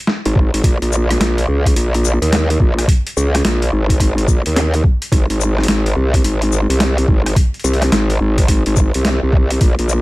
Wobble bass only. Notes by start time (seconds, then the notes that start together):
0.26 G#1
0.54 G#1
0.64 A#1
0.82 A#1
1.20 A#1
1.48 C#2
1.76 A#1
2.22 D#2
2.60 A#1
3.17 C#2
3.45 A#1
3.73 G#1
4.28 A#1
4.47 D#2
5.12 G#1
5.30 G#1
5.68 G#1
5.96 C2
6.24 G#1
6.69 C2
7.08 G#1
7.64 C2
7.92 G#1
8.20 G#1
8.66 G#1
8.95 C2
9.23 C2
9.61 A#1
9.79 A#1